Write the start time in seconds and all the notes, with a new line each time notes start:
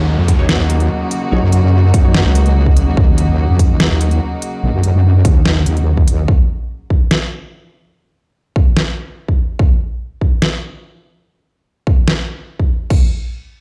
Already playing: D#2 C#3 F#3 A#3 D#4 F#4, downlifter
0.18 F2
0.28 kick, closed hi-hat
0.39 D#2 F#3 D#4 C#5
0.49 snare
0.59 D#2
0.70 closed hi-hat
0.80 closed hi-hat
1.11 closed hi-hat
1.32 A#1 F#3 D#4 C#5
1.42 F#2
1.52 closed hi-hat
1.63 F#2
1.94 F#2, kick, closed hi-hat
2.04 F#3 D#4 C#5
2.14 snare
2.25 C#2
2.35 closed hi-hat
2.46 closed hi-hat
2.66 kick
2.77 closed hi-hat
2.87 D#2
2.97 D#2, kick
3.18 closed hi-hat
3.28 D#2
3.49 F2
3.59 kick, closed hi-hat
3.70 D#2
3.80 snare
3.90 D#2
4.01 closed hi-hat
4.11 closed hi-hat
4.42 closed hi-hat
4.63 A#1
4.73 F#2
4.83 closed hi-hat
4.94 F#2
5.25 D#2, kick, closed hi-hat
5.46 snare
5.66 D#2, closed hi-hat
5.77 closed hi-hat
5.97 kick
6.08 D#2, closed hi-hat
6.28 kick
6.90 kick
7.11 snare
8.56 kick
8.77 snare
9.28 kick
9.59 kick
10.21 kick
10.42 snare
11.87 kick
12.08 snare
12.59 kick
12.90 kick, crash